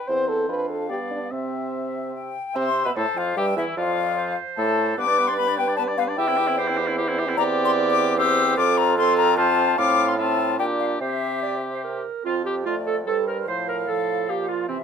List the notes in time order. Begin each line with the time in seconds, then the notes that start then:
Already playing: G5
0.08 E2 C4 C5
0.29 A4
0.48 F2 D4 B4 F5
0.70 A4
0.89 G2 B3 G4 D5
1.11 D4
1.31 C3 C4 E5
2.15 G5
2.55 C3 C4 C5 E5 C6
2.85 B2 B3 B4 B5
2.96 A2 A3 A4 C5 A5
3.16 F2 F3 F4 F5
3.36 G2 G3 G4 E5 G5
3.56 E2 E3 E4 E5
3.77 F2 F3 F4 D5 F5
4.17 C5
4.57 A2 A3 A4 A5
4.97 G2 B3 B4 D6
5.08 D4 D5
5.18 B3 B4
5.27 D4 D5 C6
5.37 B3 B4 B5
5.48 D4 D5
5.58 B3 B4 G5
5.68 D4 D5
5.77 B3 B4 D5 A5
5.88 D4 D5
5.98 B3 B4 F5
6.08 D4 D5
6.17 E2 E4 G4 E5 G5
6.28 C4 E4
6.37 E4 G4
6.47 C4 E4
6.58 E4 G4 C5
6.68 C4 E4
6.77 E4 G4
6.87 C4 E4
6.98 E4 G4 C5
7.08 C4 E4
7.19 E4 G4
7.28 C4 E4
7.37 E2 C4 G4 D5 A#5
7.65 C6
7.91 D6
8.17 C4 G4 C5 E6
8.57 F2 C4 F4 A4 D6
8.78 A#5
8.97 C4 F4 A4 C6
9.17 A#5
9.37 C4 F4 C5 A5
9.78 A2 C4 F4 F5 D6
10.08 C6
10.18 C4 F4 E5 A5
10.59 A#2 D4 G4 D5 G5
10.80 F5
11.00 C3 C4 G4 C5 E5
11.42 D5
11.74 C5
11.84 A#4
12.25 F2 C4 F4
12.45 G4
12.66 A3 F4 D5
12.87 A4
13.06 G2 G3 A4 C5
13.27 A#4
13.46 A2 F3 C5 F5
13.68 A#4
13.87 F3 A4
14.29 A#2 G4
14.48 F4
14.68 C3 E3 C4 E5